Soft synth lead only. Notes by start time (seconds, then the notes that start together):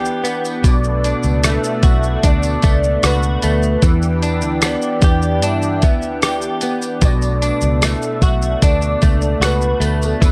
0.67 D5
1.47 E5
2.27 D5
3.06 B4
3.86 B4
4.65 D5
5.46 E5
7.04 D5
7.84 E5
8.64 D5
9.45 B4
10.04 A4
10.25 B4